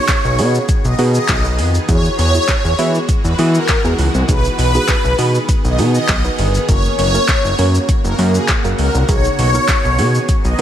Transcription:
Already playing: D#3 B3 D#4 F#4 G#4 C#5
0.08 kick, snare, clap, closed hi-hat, shaker
0.25 B1, shaker
0.38 B2 B3 D#4 F#4 G#4, open hi-hat, shaker
0.55 shaker
0.69 kick, closed hi-hat, shaker
0.85 B1, shaker
0.98 B2 B3 D#4 F#4 G#4, open hi-hat, shaker
1.15 shaker
1.29 B1, kick, snare, clap, closed hi-hat, shaker
1.44 B3 D#4 F#4 B4, shaker
1.59 F2, open hi-hat, shaker
1.75 shaker
1.88 E2 E3 G#3 B3 E4 F#4 G#4, kick, closed hi-hat, shaker
2.05 shaker
2.19 E2 C#5, open hi-hat, shaker
2.34 B3 E4 F#4 G#4, shaker
2.48 kick, snare, clap, closed hi-hat, shaker
2.65 E2, shaker
2.78 E3 B3 E4 F#4 G#4, open hi-hat, shaker
2.95 shaker
3.09 kick, closed hi-hat, shaker
3.25 E2, shaker
3.38 E3 B3 E4 F#4 G#4, open hi-hat, shaker
3.55 shaker
3.69 kick, snare, clap, closed hi-hat, shaker
3.84 E2 B3 E4 F#4 G#4, shaker
3.99 C#2, open hi-hat, shaker
4.14 C2, shaker
4.28 B1 D#3 B3 D#4 F#4 G#4, kick, closed hi-hat, shaker
4.45 shaker
4.59 B1 B4, open hi-hat, shaker
4.74 B3 D#4 F#4 G#4, shaker
4.88 kick, snare, clap, closed hi-hat, shaker
5.04 B1, shaker
5.18 B2 B3 D#4 F#4 G#4, open hi-hat, shaker
5.35 shaker
5.49 kick, closed hi-hat, shaker
5.64 B1, shaker
5.78 B2 B3 D#4 F#4 G#4, open hi-hat, shaker
5.95 shaker
6.09 B1, kick, snare, clap, closed hi-hat, shaker
6.24 B3 D#4 F#4 B4, shaker
6.38 G1, open hi-hat, shaker
6.54 shaker
6.68 F#1 C#3 A#3 C#4 F#4 A#4, kick, closed hi-hat, shaker
6.85 shaker
6.99 F#1 C#5, open hi-hat, shaker
7.14 A#3 C#4 F#4 A#4, shaker
7.28 kick, snare, clap, closed hi-hat, shaker
7.44 F#1, shaker
7.58 F#2 A#3 C#4 F#4 A#4, open hi-hat, shaker
7.75 shaker
7.89 kick, closed hi-hat, shaker
8.04 F#1, shaker
8.18 F#2 A#3 C#4 F#4 A#4, open hi-hat, shaker
8.35 shaker
8.49 kick, snare, clap, closed hi-hat, shaker
8.64 F#1 A#3 C#4 F#4 A#4, shaker
8.79 C#2, open hi-hat, shaker
8.95 C2, shaker
9.08 B1 D#3 B3 D#4 F#4 G#4, kick, closed hi-hat, shaker
9.25 shaker
9.39 B1 C#5, open hi-hat, shaker
9.54 B3 D#4 F#4 A#4, shaker
9.68 kick, snare, clap, closed hi-hat, shaker
9.85 B1, shaker
9.98 B2 B3 D#4 F#4 G#4, open hi-hat, shaker
10.15 shaker
10.29 kick, closed hi-hat, shaker
10.45 B1, shaker
10.58 B3

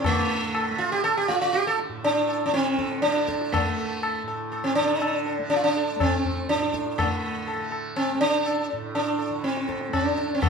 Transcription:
Already playing: A2 D3 A3
0.04 A3, tabla na, tabla ge
0.13 D3
0.30 A4
0.55 A4, tabla na
0.71 A3
0.78 F4
0.92 G4
1.04 A4, tabla na
1.17 G4
1.28 A3 F4
1.42 F4
1.53 G4, tabla te
1.67 A4
1.79 tabla te
1.89 A2
2.04 D4, tabla tin
2.29 tabla na
2.46 D3 D4
2.54 C4, tabla te
2.66 tabla te
2.79 A4, tabla ke
2.92 tabla te
3.02 D4, tabla te
3.06 A3
3.17 tabla te
3.28 A4, tabla ke
3.41 tabla te
3.52 A3, tabla na, tabla ge
3.65 A3
3.76 A4
4.02 A4, tabla na
4.23 A2
4.28 A4, tabla na
4.52 A4, tabla na
4.64 C4
4.75 D4, tabla na
4.80 D3
5.02 A4, tabla na
5.26 A4
5.39 A3
5.50 D4 A4, tabla tin
5.56 F4
5.64 D4
5.77 A4
5.96 A3
6.00 C4 A4, tabla na, tabla ge
6.25 tabla ge
6.49 D4 A4, tabla te
6.54 A2
6.62 tabla te
6.74 tabla ke
6.86 tabla te
6.98 D3 A3, tabla na, tabla ge
7.47 A4, tabla na
7.56 A3
7.71 A4, tabla na
7.96 C4, tabla na
8.14 A3
8.21 D4
8.46 tabla na
8.70 A2 A4
8.95 D4, tabla tin
9.19 A4
9.30 D3
9.44 C4, tabla te
9.57 tabla te
9.68 A4, tabla ke
9.81 tabla te
9.89 A3
9.93 D4, tabla na, tabla ge
10.17 A4, tabla te
10.35 C4
10.42 A3, tabla na, tabla ge

